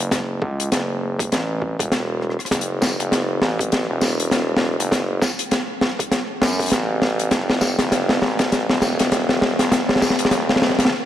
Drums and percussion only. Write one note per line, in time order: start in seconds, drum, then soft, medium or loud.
0.11 kick loud
0.11 snare medium
0.11 closed hi-hat medium
0.42 kick loud
0.60 closed hi-hat medium
0.72 snare medium
0.72 closed hi-hat medium
1.19 kick loud
1.19 closed hi-hat medium
1.32 snare medium
1.32 closed hi-hat medium
1.62 kick medium
1.79 kick loud
1.79 closed hi-hat medium
1.92 snare medium
1.92 closed hi-hat medium
2.21 cross-stick soft
2.30 cross-stick soft
2.39 cross-stick soft
2.39 closed hi-hat soft
2.45 cross-stick soft
2.45 closed hi-hat soft
2.51 kick loud
2.51 snare medium
2.51 closed hi-hat medium
2.61 closed hi-hat medium
2.82 kick loud
2.82 snare medium
2.82 tambourine medium
3.00 closed hi-hat medium
3.12 snare medium
3.12 closed hi-hat medium
3.42 snare medium
3.59 kick loud
3.59 closed hi-hat medium
3.72 snare medium
3.72 closed hi-hat medium
4.01 snare medium
4.01 tambourine medium
4.20 closed hi-hat medium
4.31 snare medium
4.31 closed hi-hat medium
4.57 snare medium
4.80 closed hi-hat medium
4.92 kick loud
4.92 snare medium
4.92 closed hi-hat medium
5.22 kick loud
5.22 snare medium
5.22 tambourine medium
5.39 closed hi-hat medium
5.51 snare medium
5.51 closed hi-hat medium
5.81 snare medium
5.99 kick loud
5.99 closed hi-hat medium
6.12 snare medium
6.12 closed hi-hat medium
6.42 kick medium
6.42 snare loud
6.42 tambourine medium
6.48 tambourine soft
6.53 tambourine soft
6.59 kick loud
6.59 closed hi-hat soft
6.59 tambourine soft
6.62 closed hi-hat soft
6.62 tambourine soft
6.66 closed hi-hat soft
6.68 closed hi-hat medium
6.68 tambourine soft
6.70 snare medium
6.70 closed hi-hat medium
6.73 closed hi-hat medium
7.02 snare medium
7.20 closed hi-hat medium
7.31 kick loud
7.31 snare medium
7.31 closed hi-hat medium
7.50 snare medium
7.61 kick loud
7.61 snare medium
7.61 tambourine medium
7.79 snare medium
7.79 closed hi-hat medium
7.92 snare loud
7.92 closed hi-hat medium
8.09 snare medium
8.22 snare medium
8.39 kick loud
8.39 snare medium
8.39 closed hi-hat medium
8.52 snare medium
8.52 closed hi-hat medium
8.70 snare medium
8.82 snare loud
8.82 tambourine medium
8.99 snare medium
8.99 closed hi-hat medium
9.12 snare loud
9.12 closed hi-hat medium
9.29 snare medium
9.42 snare loud
9.59 snare medium
9.59 closed hi-hat medium
9.72 kick loud
9.72 snare loud
9.72 snare medium
9.72 closed hi-hat medium
9.89 snare medium
9.96 snare medium
10.02 kick loud
10.02 snare loud
10.02 tambourine medium
10.10 snare medium
10.19 closed hi-hat medium
10.25 snare medium
10.31 snare loud
10.31 closed hi-hat medium
10.49 snare medium
10.56 snare medium
10.62 snare loud
10.70 snare soft
10.79 kick loud
10.79 snare loud
10.79 closed hi-hat medium
10.85 snare medium